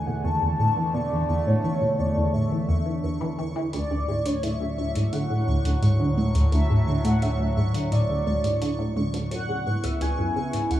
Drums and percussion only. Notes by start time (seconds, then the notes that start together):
3.73 closed hi-hat
4.26 closed hi-hat
4.43 closed hi-hat
4.95 closed hi-hat
5.13 closed hi-hat
5.65 closed hi-hat
5.83 closed hi-hat
6.18 high conga
6.35 closed hi-hat
6.52 closed hi-hat
7.05 closed hi-hat
7.22 closed hi-hat
7.74 closed hi-hat
7.92 closed hi-hat
8.27 high conga
8.44 closed hi-hat
8.62 closed hi-hat
8.97 high conga
9.14 closed hi-hat
9.31 closed hi-hat
9.84 closed hi-hat
10.01 closed hi-hat
10.53 closed hi-hat
10.71 closed hi-hat